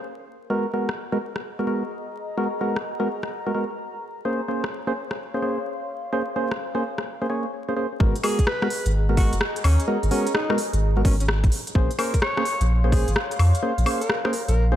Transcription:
Already playing: A#4 F5 C6
0.50 G#3 B3 F#4 G#4 A#4
0.73 G#3 B3 F#4 A#4
0.88 D#5 A#5, cross-stick
1.12 G#3 B3 F#4 A#4
1.36 cross-stick
1.59 G#3 B3 F#4 A#4
1.67 G#3 B3 F#4 A#4
2.37 G#3 B3 F#4 A#4
2.61 G#3 B3 F#4 A#4
2.76 cross-stick
3.00 G#3 B3 F#4 A#4
3.23 cross-stick
3.47 G#3 B3 F#4 A#4
3.55 G#3 B3 F#4 A#4
4.01 C#5
4.25 A#3 C#4 G#4 C5
4.36 F5
4.48 A#3 C#4 G#4 C5
4.64 cross-stick
4.77 C6
4.87 A#3 C#4 G#4 C5
5.11 cross-stick
5.34 A#3 C#4 G#4 C5
5.42 A#3 C#4 G#4 C5
6.13 A#3 C#4 G#4 C5
6.36 A#3 C#4 G#4 C5
6.51 cross-stick
6.75 A#3 C#4 G#4 C5
6.98 cross-stick
7.22 A#3 C#4 G#4 C5
7.30 A#3 C#4 G#4 C#5
7.68 A#3 C#4 G#4 C5
7.76 A#3 C#4 G#4 C5
8.00 G#1 G#3 B3 F#4 G#4 A#4, kick
8.16 closed hi-hat
8.22 G#3 B3 F#4 G#4 A#4 D#5, open hi-hat, high woodblock
8.28 A#5
8.39 kick, closed hi-hat
8.47 B4, cross-stick
8.62 G#3 B3 F#4 A#4, cross-stick
8.70 open hi-hat
8.86 G#1, closed hi-hat
9.09 G#3 B3 F#4 A#4
9.17 G#3 B3 F#4 A#4, kick, open hi-hat
9.33 F#1, closed hi-hat
9.41 cross-stick
9.56 closed hi-hat
9.64 D#2 C#4, open hi-hat, high woodblock
9.80 closed hi-hat
9.88 G#3 B3 F#4 A#4
10.03 G#1, closed hi-hat
10.11 G#3 B3 C#4 F#4 A#4, open hi-hat
10.27 closed hi-hat
10.35 D#4, cross-stick
10.50 G#3 B3 F#4 A#4, cross-stick
10.58 open hi-hat
10.73 G#1, closed hi-hat
10.97 G#3 B3 F#4 A#4
11.05 G#1 C#4, kick, open hi-hat
11.20 C#4, closed hi-hat
11.28 cross-stick
11.44 kick, closed hi-hat
11.52 C#5, open hi-hat
11.67 closed hi-hat
11.72 A#1 A#3 C#4 G#4 C5 F5, kick
11.83 C6
11.91 closed hi-hat
11.99 A#3 C#4 G#4 A#4 C5, open hi-hat, high woodblock
12.14 kick, closed hi-hat
12.22 C#5, cross-stick
12.37 A#3 C#4 G#4 C5, cross-stick
12.46 open hi-hat
12.61 A#1, closed hi-hat
12.84 A#3 C#4 G#4 C5
12.92 A#3 C#4 G#4 C5, kick, open hi-hat
13.08 G#1, closed hi-hat
13.16 cross-stick
13.31 closed hi-hat
13.39 F2, open hi-hat, high woodblock
13.55 closed hi-hat
13.63 A#3 C#4 G#4 C5
13.78 A#1, closed hi-hat
13.86 A#3 C#4 G#4 C5, open hi-hat, high woodblock
14.01 A#4, closed hi-hat
14.10 cross-stick
14.25 A#3 C#4 G#4 A#4 C5, cross-stick
14.33 A#4, open hi-hat
14.48 A#1 A#4, closed hi-hat
14.72 A#3 C#4 G#4 C5

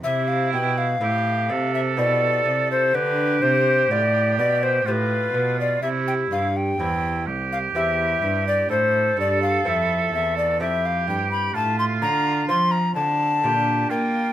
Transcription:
0.04 C3 E4 E5
0.28 F5
0.53 B2 G5
0.78 F5
1.01 A2 C4 E4 G4
1.49 C3 A4
1.74 E5
1.97 B2 C4 E4 G4 D5
2.45 C3
2.71 C5
2.94 D3 G4 B4
3.42 C3 C5
3.90 A2 F4 G4 D5
4.38 B2 D5
4.63 C5
4.86 A2 F4 G4 C5
4.91 B4
5.34 B2
5.60 D5
5.82 C3 E4 E5
6.08 G5
6.31 G2 F5
6.57 G5
6.79 E2 C4 E4 G4
7.27 C2 G4
7.52 F5
7.74 E2 C4 E4 G4 E5
8.22 G2
8.48 D5
8.69 A2 A4 C5
9.17 G2 D5
9.42 F5
9.65 F2 C4 E4 A4 E5
10.12 E2 E5
10.37 D5
10.60 F2 C4 E4 G4 A4 E5
10.86 F5
11.07 G2 G5
11.31 B5
11.55 A2 F4 A5
11.79 C6
12.02 D3 A#5
12.49 F3 C4 F4 C5 C6
12.71 A#5
12.95 D3 A5
13.44 A#2 D4 F4 G4
13.90 A#3 F4 G5

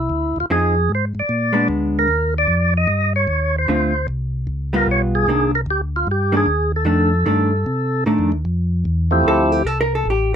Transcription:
0.00 E4
0.10 D2
0.36 D2
0.40 F4
0.50 F2 F3 C4 D#4 G#4
0.89 G#2
0.95 C5
1.15 G#2
1.19 D5
1.29 A#2
1.53 G#3 B3 D4
1.68 D2
1.99 A#4
2.08 D#2
2.38 D5
2.47 F2
2.77 D#5
2.87 G2
3.16 C#5
3.27 D#2
3.58 C5
3.68 D2 D3 A3 C4 F4
4.08 C2
4.47 C#2
4.73 G3 B3 F4 A#4
4.87 B1
4.91 C#5
5.15 G#4
5.27 C2 D#3 A#3 D4
5.55 A#4
5.66 D2
5.71 G4
5.96 F4
6.07 G2
6.11 G4
6.32 D#3 A#3 D4
6.37 G#4
6.46 D#2
6.76 A4
6.85 F2 D#3 A3 D4
7.26 G2 D#3 A3 D4
7.66 C3
8.06 A2 D#3 A3 D4
8.19 F2
8.32 D#2
8.45 F2
8.85 E2
9.11 F3 A3 C4 E4 G4
9.24 D2 A4
9.52 G4
9.65 C2 A4
9.81 A#4
9.95 A4
10.05 A1
10.10 G4

